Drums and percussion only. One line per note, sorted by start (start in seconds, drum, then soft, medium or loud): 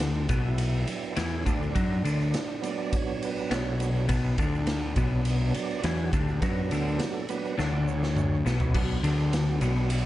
0.00 snare loud
0.00 ride medium
0.00 shaker medium
0.29 kick loud
0.29 ride medium
0.29 shaker loud
0.58 ride loud
0.58 shaker medium
0.87 ride medium
0.87 shaker medium
1.04 shaker soft
1.16 snare loud
1.16 ride medium
1.16 shaker medium
1.46 kick loud
1.46 ride medium
1.46 shaker medium
1.62 shaker soft
1.75 kick loud
1.75 ride medium
1.75 shaker medium
2.05 ride medium
2.05 shaker medium
2.21 shaker soft
2.34 snare loud
2.34 ride medium
2.34 shaker medium
2.63 ride medium
2.63 shaker medium
2.93 kick loud
2.93 ride medium
2.93 shaker medium
3.22 ride medium
3.22 shaker medium
3.38 shaker soft
3.51 snare loud
3.51 ride medium
3.51 shaker medium
3.80 ride medium
3.80 shaker loud
3.96 shaker soft
4.09 kick loud
4.09 ride loud
4.09 shaker medium
4.38 kick loud
4.38 ride medium
4.38 shaker loud
4.55 shaker soft
4.67 snare loud
4.67 ride medium
4.67 shaker medium
4.96 kick loud
4.96 ride medium
4.96 shaker medium
5.25 ride loud
5.25 shaker medium
5.54 ride medium
5.54 shaker medium
5.71 shaker soft
5.83 snare loud
5.83 ride medium
5.83 shaker medium
6.13 kick loud
6.13 ride medium
6.13 shaker medium
6.28 shaker soft
6.42 kick medium
6.42 ride medium
6.42 shaker medium
6.71 ride medium
6.71 shaker loud
6.88 shaker soft
6.99 snare loud
6.99 ride medium
6.99 shaker medium
7.29 ride medium
7.29 shaker loud
7.45 shaker soft
7.59 snare medium
7.59 shaker medium
7.73 high tom medium
7.88 shaker medium
8.03 snare medium
8.03 shaker soft
8.16 mid tom medium
8.16 shaker medium
8.46 snare medium
8.46 shaker loud
8.60 floor tom medium
8.60 shaker soft
8.75 kick loud
8.75 crash loud
8.75 shaker medium
9.04 ride medium
9.04 shaker medium
9.19 shaker soft
9.33 snare loud
9.33 ride medium
9.33 shaker medium
9.61 ride medium
9.61 shaker medium
9.76 shaker soft
9.90 ride loud
9.90 shaker medium